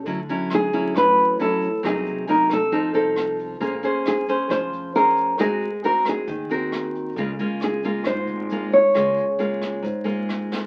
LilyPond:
<<
  \new Staff \with { instrumentName = "Nylon-string guitar" } { \time 4/4 \key des \major \tempo 4 = 135 r4 aes'4 ces''4 a'4 | aes'4 bes'8 a'2 r8 | r4 aes'4 c''4 bes'4 | aes'4 bes'8 aes'2 r8 |
r4 aes'4 c''4. des''8~ | des''2. r4 | }
  \new Staff \with { instrumentName = "Nylon-string guitar" } { \time 4/4 \key des \major << { <fis cis' e'>8 <fis cis' e'>4 <fis cis' e'>4. <fis cis' e'>8 r8 | <ges bes ees'>4 <ges bes ees'>8 r8 <c' ees' a'>8 <c' ees' a'>4. | <des' aes' c''>8 <des' aes' c''>4 <des' aes' c''>4. <des' aes' c''>4 | <c' ges' bes'>8 r8 <c' ges' bes'>4 r8 <c' ges' bes'>4. |
<aes bes f'>8 <aes bes f'>4 <aes bes f'>4. <aes bes f'>8 r8 | <aes bes f'>8 r8 <aes bes f'>4 r8 <aes bes f'>4. | } \\ { d2 a,2 | c2 f2 | bes2 f2 | aes2 ees2 |
des2 aes,2 | des2 aes,2 | } >> }
  \new Staff \with { instrumentName = "Upright bass" } { \clef bass \time 4/4 \key des \major d,8 r4. a,,8 a,,4. | c,8 r4. f,8 c,4. | bes,,8 r4. f,8 f,4. | aes,,8 r4. ees,8 ees,4. |
des,8 r4. aes,,8 aes,,4. | des,8 r4. aes,,8 aes,,4. | }
  \new DrumStaff \with { instrumentName = "Drums" } \drummode { \time 4/4 <hh bd>8 hh8 <hh ss>8 hh8 <hh bd ss>8 hh8 hh8 hh8 | <hh bd ss>8 hh8 hh8 <hh ss>8 <hh bd>8 hh8 <hh ss>8 hh8 | <hh bd>8 hh8 <hh ss>8 hh8 <hh bd ss>8 hh8 hh8 hh8 | <hh bd ss>8 hh8 hh8 <hh ss>8 <hh bd>8 hh8 <hh ss>8 hh8 |
<hh bd>8 hh8 <hh ss>8 hh8 <hh bd ss>8 hh8 hh8 hh8 | <hh bd ss>8 hh8 hh8 <hh ss>8 <hh bd>8 hh8 <hh ss>8 sn8 | }
>>